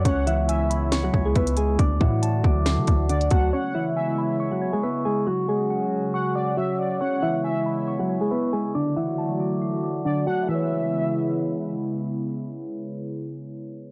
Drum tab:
HH |x-x-x-x-x---xxx-|x---x---x-x-xxx-|----------------|----------------|
SD |--------o-------|--------o-------|----------------|----------------|
BD |o---------o-o---|o-o---o---o---o-|----------------|----------------|

HH |----------------|----------------|----------------|----------------|
SD |----------------|----------------|----------------|----------------|
BD |----------------|----------------|----------------|----------------|